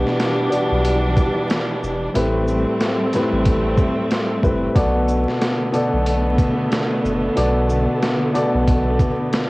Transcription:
0.00 0.45 B2 medium
0.00 2.12 E3 medium
0.00 2.12 G3 medium
0.00 0.46 B3 medium
0.00 2.12 D4 loud
0.00 0.46 F#4 medium
0.00 0.46 G4 medium
0.00 0.46 D5 loud
0.07 snare soft
0.20 snare loud
0.20 closed hi-hat medium
0.49 2.03 B2 medium
0.49 2.03 B3 medium
0.49 2.03 F#4 medium
0.49 2.03 G4 medium
0.49 2.04 D5 loud
0.49 closed hi-hat medium
0.49 shaker medium
0.71 1.21 B1 medium
0.85 closed hi-hat loud
1.17 kick medium
1.17 closed hi-hat medium
1.17 shaker medium
1.50 snare loud
1.50 closed hi-hat medium
1.83 2.08 E1 medium
1.83 shaker soft
2.14 2.65 A1 loud
2.14 3.06 A2 loud
2.14 4.74 G3 medium
2.14 3.06 A3 medium
2.14 4.74 A3 medium
2.14 3.06 C4 medium
2.14 4.74 C4 medium
2.14 3.06 G4 medium
2.14 3.07 B4 loud
2.14 closed hi-hat loud
2.48 shaker medium
2.81 snare loud
2.81 closed hi-hat medium
3.13 4.35 A2 medium
3.13 4.35 A3 medium
3.13 4.35 C4 medium
3.13 4.36 G4 medium
3.13 4.36 B4 loud
3.13 snare soft
3.13 closed hi-hat medium
3.13 shaker medium
3.32 3.82 A1 medium
3.45 kick loud
3.45 closed hi-hat loud
3.77 kick loud
3.77 shaker medium
4.11 snare loud
4.11 closed hi-hat medium
4.42 4.68 F#1 medium
4.42 4.73 A2 medium
4.42 4.73 A3 medium
4.42 4.73 C4 medium
4.42 4.74 G4 medium
4.42 4.74 B4 medium
4.42 kick medium
4.42 shaker soft
4.74 5.26 B1 loud
4.74 5.66 B2 medium
4.74 9.50 D3 medium
4.74 9.50 A3 medium
4.74 5.67 B3 medium
4.74 9.50 B3 medium
4.74 5.67 F#4 medium
4.74 5.67 A4 medium
4.74 5.67 D5 loud
4.74 kick loud
4.74 closed hi-hat loud
5.08 shaker medium
5.28 snare soft
5.42 snare loud
5.42 closed hi-hat medium
5.72 7.25 B2 medium
5.72 7.25 B3 medium
5.72 7.25 F#4 medium
5.72 7.26 A4 medium
5.72 7.26 D5 medium
5.72 closed hi-hat medium
5.72 shaker medium
5.93 6.43 B1 medium
6.06 closed hi-hat loud
6.38 kick medium
6.38 closed hi-hat medium
6.38 shaker medium
6.72 snare loud
6.72 closed hi-hat medium
7.04 7.29 F#1 loud
7.04 shaker soft
7.36 7.87 B1 loud
7.36 8.27 B2 medium
7.36 8.28 B3 medium
7.36 8.28 F#4 medium
7.36 8.28 A4 medium
7.36 8.28 D5 loud
7.36 closed hi-hat loud
7.69 shaker medium
8.02 snare loud
8.02 closed hi-hat medium
8.33 9.50 B2 medium
8.33 9.50 B3 medium
8.33 9.50 F#4 medium
8.33 9.50 A4 medium
8.33 9.50 D5 loud
8.33 closed hi-hat medium
8.33 shaker medium
8.54 9.04 B1 loud
8.68 kick loud
8.68 closed hi-hat loud
8.99 kick medium
8.99 closed hi-hat medium
8.99 shaker medium
9.33 snare loud
9.33 closed hi-hat medium

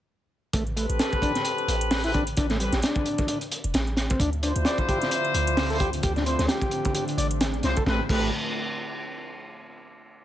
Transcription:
0.53 0.86 A1 medium
0.53 0.63 A3 medium
0.53 kick loud
0.53 closed hi-hat medium
0.67 closed hi-hat soft
0.76 0.86 A3 medium
0.76 2.01 C4 medium
0.76 2.01 G4 medium
0.76 2.01 A4 medium
0.76 2.01 B4 loud
0.76 closed hi-hat medium
0.89 0.98 A1 loud
0.89 closed hi-hat medium
0.99 1.12 A4 medium
0.99 snare loud
0.99 closed hi-hat medium
1.13 kick medium
1.13 closed hi-hat soft
1.22 1.32 D4 loud
1.22 kick medium
1.22 closed hi-hat medium
1.35 snare soft
1.35 closed hi-hat medium
1.45 closed hi-hat medium
1.58 closed hi-hat soft
1.68 2.34 A1 medium
1.68 closed hi-hat medium
1.81 closed hi-hat medium
1.91 snare loud
1.91 closed hi-hat medium
1.91 open hi-hat medium
2.04 2.20 C4 medium
2.04 2.11 E4 loud
2.04 2.20 G4 medium
2.04 2.20 A4 medium
2.04 2.20 B4 loud
2.04 closed hi-hat soft
2.14 2.24 D4 loud
2.14 kick medium
2.14 closed hi-hat medium
2.27 closed hi-hat medium
2.27 closed hi-hat soft
2.37 2.70 A1 loud
2.37 2.47 D4 medium
2.37 kick medium
2.37 closed hi-hat medium
2.50 2.57 A3 loud
2.50 snare soft
2.50 closed hi-hat soft
2.60 2.72 G3 medium
2.60 2.72 C4 medium
2.60 2.72 G4 medium
2.60 2.72 A4 medium
2.60 2.72 B4 medium
2.60 closed hi-hat medium
2.72 2.81 A1 loud
2.72 2.80 G4 medium
2.72 snare soft
2.72 closed hi-hat medium
2.82 3.27 D4 medium
2.82 snare loud
2.82 closed hi-hat medium
2.96 kick loud
2.96 closed hi-hat soft
3.06 closed hi-hat medium
3.18 kick medium
3.18 closed hi-hat medium
3.28 3.38 D4 medium
3.28 closed hi-hat medium
3.41 closed hi-hat soft
3.51 closed hi-hat medium
3.64 3.73 E1 loud
3.64 closed hi-hat medium
3.74 4.17 A1 medium
3.74 snare loud
3.74 closed hi-hat medium
3.87 closed hi-hat soft
3.97 snare medium
3.97 closed hi-hat medium
4.10 4.19 C4 loud
4.10 kick loud
4.10 closed hi-hat medium
4.20 4.53 D2 medium
4.20 7.83 D3 medium
4.20 7.83 F3 medium
4.20 7.83 A3 medium
4.20 7.83 C4 medium
4.20 4.30 D4 loud
4.20 6.01 E5 medium
4.20 kick loud
4.20 closed hi-hat medium
4.33 closed hi-hat soft
4.43 5.67 D4 medium
4.43 4.53 D4 medium
4.43 5.67 E4 medium
4.43 5.67 F4 medium
4.43 5.67 C5 loud
4.43 closed hi-hat medium
4.56 4.64 D2 loud
4.56 closed hi-hat medium
4.65 4.78 D5 medium
4.65 snare loud
4.65 closed hi-hat medium
4.78 kick loud
4.78 closed hi-hat soft
4.89 4.98 G4 loud
4.89 kick medium
4.89 closed hi-hat medium
5.02 snare soft
5.02 closed hi-hat medium
5.11 closed hi-hat medium
5.25 closed hi-hat soft
5.34 6.01 D2 medium
5.34 closed hi-hat medium
5.47 closed hi-hat medium
5.57 snare loud
5.57 closed hi-hat medium
5.57 open hi-hat medium
5.70 5.87 D4 medium
5.70 5.87 E4 medium
5.70 5.87 F4 medium
5.70 5.78 A4 loud
5.70 5.87 C5 loud
5.70 closed hi-hat soft
5.80 5.90 G4 loud
5.80 kick medium
5.80 closed hi-hat medium
5.93 closed hi-hat medium
5.93 closed hi-hat soft
6.03 6.36 D2 loud
6.03 7.85 D4 medium
6.03 6.13 G4 medium
6.03 kick loud
6.03 closed hi-hat medium
6.16 6.24 D4 loud
6.16 snare soft
6.16 closed hi-hat soft
6.26 6.38 C4 medium
6.26 6.38 D4 medium
6.26 6.38 E4 medium
6.26 6.38 F4 medium
6.26 6.38 C5 medium
6.26 closed hi-hat medium
6.39 6.47 D2 loud
6.39 6.46 C5 medium
6.39 snare soft
6.39 closed hi-hat medium
6.48 6.94 G4 medium
6.48 snare loud
6.48 closed hi-hat medium
6.48 closed hi-hat soft
6.62 kick loud
6.62 closed hi-hat soft
6.71 closed hi-hat medium
6.85 kick loud
6.85 closed hi-hat medium
6.95 7.05 G4 medium
6.95 closed hi-hat medium
7.08 closed hi-hat soft
7.17 7.61 A1 medium
7.17 7.27 D5 medium
7.17 closed hi-hat medium
7.31 closed hi-hat medium
7.41 snare loud
7.41 closed hi-hat medium
7.54 closed hi-hat soft
7.63 7.74 C2 medium
7.63 7.76 D4 loud
7.63 7.76 E4 medium
7.63 7.76 F4 medium
7.63 7.76 C5 loud
7.63 snare medium
7.63 closed hi-hat medium
7.77 7.84 A4 medium
7.77 kick loud
7.77 closed hi-hat medium
7.86 8.00 A1 medium
7.86 8.00 A3 medium
7.86 8.00 C4 medium
7.86 8.00 G4 medium
7.86 8.00 A4 medium
7.86 8.00 B4 medium
7.86 kick loud
7.86 snare medium
8.09 8.31 A1 medium
8.09 8.31 A3 medium
8.09 8.27 C4 medium
8.09 8.27 G4 medium
8.09 8.27 A4 medium
8.09 8.27 B4 medium
8.09 kick loud
8.09 crash medium

